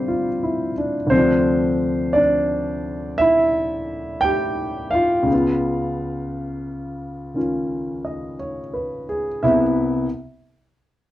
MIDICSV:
0, 0, Header, 1, 2, 480
1, 0, Start_track
1, 0, Tempo, 1039861
1, 511, Time_signature, 4, 2, 24, 8
1, 5129, End_track
2, 0, Start_track
2, 0, Title_t, "Grand piano"
2, 0, Program_c, 0, 0
2, 0, Control_c, 0, 64, 127
2, 0, Note_on_c, 0, 43, 45
2, 0, Note_on_c, 0, 48, 35
2, 0, Note_on_c, 0, 50, 43
2, 0, Note_on_c, 0, 53, 42
2, 0, Note_on_c, 0, 55, 46
2, 0, Note_on_c, 0, 60, 54
2, 0, Note_on_c, 0, 62, 58
2, 0, Note_on_c, 0, 67, 41
2, 0, Note_on_c, 0, 72, 71
2, 37, Note_on_c, 0, 65, 49
2, 121, Note_off_c, 0, 67, 0
2, 198, Note_on_c, 0, 64, 50
2, 334, Note_off_c, 0, 72, 0
2, 337, Note_off_c, 0, 60, 0
2, 337, Note_off_c, 0, 65, 0
2, 359, Note_off_c, 0, 62, 0
2, 359, Note_on_c, 0, 62, 55
2, 443, Note_off_c, 0, 64, 0
2, 492, Note_on_c, 0, 38, 54
2, 502, Note_off_c, 0, 48, 0
2, 507, Note_on_c, 0, 72, 80
2, 509, Note_on_c, 0, 48, 47
2, 510, Note_off_c, 0, 43, 0
2, 511, Note_off_c, 0, 50, 0
2, 516, Control_c, 0, 64, 0
2, 517, Note_off_c, 0, 55, 0
2, 517, Note_on_c, 0, 60, 57
2, 518, Note_off_c, 0, 53, 0
2, 525, Note_on_c, 0, 53, 49
2, 536, Note_off_c, 0, 62, 0
2, 543, Note_on_c, 0, 62, 62
2, 594, Control_c, 0, 64, 127
2, 976, Note_off_c, 0, 60, 0
2, 984, Note_on_c, 0, 74, 75
2, 991, Note_off_c, 0, 62, 0
2, 998, Note_on_c, 0, 62, 61
2, 1004, Note_off_c, 0, 72, 0
2, 1449, Note_off_c, 0, 74, 0
2, 1456, Note_off_c, 0, 62, 0
2, 1467, Note_on_c, 0, 76, 96
2, 1482, Note_on_c, 0, 64, 70
2, 1930, Note_off_c, 0, 76, 0
2, 1938, Note_off_c, 0, 64, 0
2, 1941, Note_on_c, 0, 79, 98
2, 1957, Note_on_c, 0, 67, 72
2, 2248, Note_off_c, 0, 79, 0
2, 2257, Note_off_c, 0, 67, 0
2, 2263, Note_on_c, 0, 77, 81
2, 2281, Note_on_c, 0, 65, 64
2, 2412, Note_on_c, 0, 37, 52
2, 2422, Note_off_c, 0, 38, 0
2, 2429, Note_on_c, 0, 49, 47
2, 2430, Note_off_c, 0, 48, 0
2, 2437, Control_c, 0, 64, 0
2, 2438, Note_off_c, 0, 53, 0
2, 2447, Note_on_c, 0, 59, 46
2, 2457, Note_off_c, 0, 65, 0
2, 2464, Note_on_c, 0, 65, 59
2, 2512, Control_c, 0, 64, 127
2, 3390, Note_on_c, 0, 51, 36
2, 3397, Note_off_c, 0, 65, 0
2, 3397, Note_on_c, 0, 61, 34
2, 3403, Note_on_c, 0, 65, 41
2, 3714, Note_on_c, 0, 75, 43
2, 3847, Note_off_c, 0, 77, 0
2, 3875, Note_on_c, 0, 73, 44
2, 3960, Note_off_c, 0, 75, 0
2, 4033, Note_on_c, 0, 71, 43
2, 4174, Note_off_c, 0, 73, 0
2, 4196, Note_on_c, 0, 68, 48
2, 4279, Note_off_c, 0, 71, 0
2, 4339, Note_off_c, 0, 37, 0
2, 4348, Note_off_c, 0, 49, 0
2, 4349, Note_off_c, 0, 51, 0
2, 4352, Note_off_c, 0, 59, 0
2, 4352, Note_off_c, 0, 61, 0
2, 4352, Note_on_c, 0, 76, 65
2, 4354, Note_on_c, 0, 36, 57
2, 4355, Note_off_c, 0, 65, 0
2, 4355, Control_c, 0, 64, 0
2, 4355, Note_on_c, 0, 48, 54
2, 4358, Note_on_c, 0, 59, 52
2, 4358, Note_on_c, 0, 64, 66
2, 4441, Note_off_c, 0, 68, 0
2, 4640, Note_off_c, 0, 36, 0
2, 4640, Note_off_c, 0, 48, 0
2, 4642, Note_off_c, 0, 59, 0
2, 4642, Note_off_c, 0, 64, 0
2, 4652, Note_off_c, 0, 76, 0
2, 5129, End_track
0, 0, End_of_file